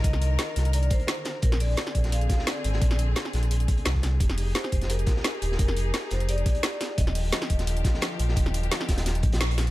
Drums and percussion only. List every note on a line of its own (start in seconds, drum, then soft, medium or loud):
0.04 kick loud
0.04 closed hi-hat medium
0.13 snare soft
0.22 closed hi-hat medium
0.39 snare loud
0.39 closed hi-hat medium
0.56 snare soft
0.56 closed hi-hat medium
0.65 closed hi-hat soft
0.73 closed hi-hat medium
0.83 closed hi-hat soft
0.90 kick loud
0.90 closed hi-hat medium
0.99 closed hi-hat soft
1.07 snare loud
1.07 closed hi-hat medium
1.25 snare medium
1.25 closed hi-hat medium
1.42 kick loud
1.42 closed hi-hat medium
1.52 snare soft
1.60 closed hi-hat medium
1.60 open hi-hat medium
1.77 snare loud
1.77 closed hi-hat medium
1.87 snare medium
1.95 kick medium
1.95 closed hi-hat medium
2.04 snare soft
2.04 closed hi-hat soft
2.12 closed hi-hat medium
2.21 closed hi-hat soft
2.29 kick loud
2.29 snare medium
2.29 closed hi-hat medium
2.39 snare soft
2.47 snare loud
2.47 closed hi-hat medium
2.64 closed hi-hat medium
2.73 snare soft
2.82 kick loud
2.82 closed hi-hat medium
2.91 snare soft
2.99 closed hi-hat medium
3.16 snare loud
3.16 closed hi-hat medium
3.25 snare medium
3.33 snare soft
3.33 closed hi-hat medium
3.43 closed hi-hat soft
3.51 closed hi-hat medium
3.60 closed hi-hat soft
3.68 kick loud
3.68 closed hi-hat medium
3.77 closed hi-hat soft
3.85 snare loud
3.85 closed hi-hat medium
3.95 kick medium
3.95 snare soft
4.02 snare medium
4.02 snare soft
4.02 closed hi-hat medium
4.20 kick loud
4.20 closed hi-hat medium
4.30 snare soft
4.38 closed hi-hat medium
4.38 open hi-hat medium
4.55 snare loud
4.55 closed hi-hat medium
4.64 snare medium
4.72 kick medium
4.72 closed hi-hat medium
4.81 snare medium
4.81 closed hi-hat soft
4.90 closed hi-hat medium
4.99 closed hi-hat soft
5.07 kick loud
5.07 snare medium
5.07 closed hi-hat medium
5.16 snare soft
5.24 snare loud
5.24 closed hi-hat medium
5.42 closed hi-hat medium
5.52 snare soft
5.59 kick loud
5.59 closed hi-hat medium
5.68 snare soft
5.77 closed hi-hat medium
5.94 snare loud
5.94 closed hi-hat medium
6.10 snare soft
6.10 closed hi-hat medium
6.20 closed hi-hat soft
6.29 closed hi-hat medium
6.38 closed hi-hat soft
6.46 kick loud
6.46 closed hi-hat medium
6.55 closed hi-hat soft
6.63 snare loud
6.63 closed hi-hat medium
6.81 snare medium
6.81 snare soft
6.81 closed hi-hat medium
6.98 kick loud
6.98 closed hi-hat loud
6.98 closed hi-hat medium
7.07 snare soft
7.15 closed hi-hat medium
7.15 open hi-hat medium
7.32 snare loud
7.32 closed hi-hat medium
7.42 snare medium
7.50 kick medium
7.50 closed hi-hat medium
7.59 snare medium
7.59 closed hi-hat soft
7.67 closed hi-hat medium
7.77 closed hi-hat soft
7.84 kick loud
7.84 snare medium
7.84 closed hi-hat medium
7.94 snare soft
8.02 snare loud
8.02 closed hi-hat medium
8.19 closed hi-hat medium
8.29 snare medium
8.36 kick loud
8.36 closed hi-hat medium
8.36 closed hi-hat loud
8.46 snare soft
8.54 closed hi-hat medium
8.63 closed hi-hat soft
8.71 snare loud
8.71 closed hi-hat loud
8.71 closed hi-hat medium
8.81 snare medium
8.88 kick medium
8.88 snare loud
8.88 closed hi-hat medium
8.97 snare loud
8.97 closed hi-hat soft
8.97 closed hi-hat medium
9.06 snare loud
9.06 closed hi-hat medium
9.06 closed hi-hat loud
9.15 closed hi-hat soft
9.23 kick loud
9.23 closed hi-hat medium
9.32 snare loud
9.32 closed hi-hat medium
9.41 snare loud
9.41 closed hi-hat loud
9.51 closed hi-hat medium
9.58 snare medium
9.58 snare soft
9.58 closed hi-hat medium
9.67 closed hi-hat soft